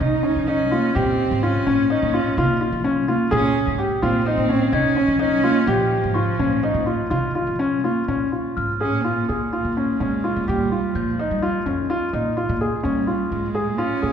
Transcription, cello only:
0.00 D#4
0.47 C#4
0.96 C4
1.43 C#4
1.91 C#4
2.38 A#3
3.32 C#4
4.03 C4
4.26 C4
4.74 C#4
5.21 C#4
5.68 F3
8.81 C#4
9.03 A#3
9.51 A#3
9.99 G#3
10.46 G3
10.93 F3
12.83 G3
13.31 G#3
13.78 C#4

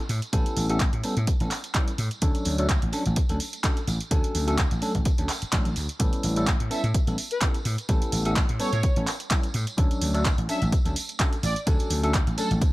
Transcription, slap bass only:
0.09 A2
0.33 A1
0.57 A1
0.93 A2
1.17 A2
1.41 A1
1.98 A2
2.22 D2
2.46 D2
2.83 A1
3.06 A1
3.30 D2
3.87 A1
4.11 D2
4.35 D2
4.72 A1
4.95 A1
5.19 D2
5.43 muted slap bass stroke
5.53 A1
5.66 A1
5.77 D2
6.00 A1
6.24 A1
6.60 A2
6.84 A2
6.95 muted slap bass stroke
7.07 A1
7.65 A2
7.89 A1
8.13 A1
8.50 A2
8.73 A2
8.97 A1
9.54 A2
9.78 D2
10.02 D2
10.38 A1
10.62 A1
10.72 muted slap bass stroke
10.85 D2
11.43 A1
11.67 D2
11.90 D2
12.27 A1
12.51 A1
12.62 D2

